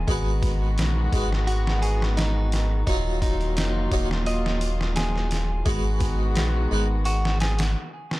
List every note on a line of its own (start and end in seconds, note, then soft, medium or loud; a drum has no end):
0.00 5.62 D#3 medium
0.08 0.80 G#1 loud
0.08 1.08 G#3 medium
0.08 2.84 G#3 medium
0.08 2.85 B3 medium
0.08 2.84 F#4 medium
0.08 1.09 F#4 medium
0.08 1.10 B4 medium
0.08 kick loud
0.08 open hi-hat medium
0.43 kick loud
0.43 open hi-hat medium
0.78 1.09 A#1 medium
0.78 snare loud
0.78 open hi-hat medium
1.12 2.84 G#1 medium
1.12 1.27 G#3 medium
1.12 1.28 F#4 medium
1.12 1.28 B4 medium
1.12 kick medium
1.12 open hi-hat medium
1.32 snare soft
1.47 1.79 F#4 loud
1.47 open hi-hat medium
1.67 snare medium
1.82 2.03 G#4 medium
1.82 open hi-hat medium
2.02 snare medium
2.17 2.84 D#4 medium
2.17 snare loud
2.17 open hi-hat medium
2.52 snare medium
2.52 open hi-hat medium
2.87 3.59 D#1 medium
2.87 5.63 F#3 medium
2.87 3.88 F#3 medium
2.87 5.63 A#3 medium
2.87 3.19 D#4 loud
2.87 3.88 D#4 medium
2.87 5.63 F4 medium
2.87 3.89 F4 medium
2.87 kick loud
2.87 open hi-hat medium
3.22 3.53 D#4 medium
3.22 kick medium
3.22 open hi-hat medium
3.41 closed hi-hat soft
3.57 3.88 F1 medium
3.57 4.23 D#4 medium
3.57 snare loud
3.57 open hi-hat medium
3.92 5.63 D#1 medium
3.92 4.06 F#3 medium
3.92 4.07 D#4 medium
3.92 4.07 F4 medium
3.92 kick medium
3.92 open hi-hat medium
4.11 snare medium
4.26 4.93 D#5 medium
4.26 open hi-hat medium
4.46 snare soft
4.61 open hi-hat medium
4.81 snare soft
4.96 5.66 G#4 medium
4.96 snare loud
4.96 open hi-hat medium
5.16 snare soft
5.31 snare soft
5.31 open hi-hat medium
5.66 6.38 G#1 medium
5.66 7.73 D#3 medium
5.66 6.67 G#3 medium
5.66 7.73 G#3 medium
5.66 7.73 B3 medium
5.66 7.73 F#4 medium
5.66 6.67 F#4 medium
5.66 6.68 B4 medium
5.66 kick loud
5.66 open hi-hat medium
6.00 kick medium
6.00 open hi-hat medium
6.36 6.67 A#1 medium
6.36 snare loud
6.36 open hi-hat medium
6.71 7.76 G#1 medium
6.71 6.85 G#3 medium
6.71 6.86 F#4 medium
6.71 6.86 B4 medium
7.05 7.37 F#4 loud
7.05 open hi-hat medium
7.25 snare medium
7.40 7.61 G#4 medium
7.40 snare medium
7.40 open hi-hat medium
7.59 snare loud
7.59 open hi-hat medium
8.11 snare medium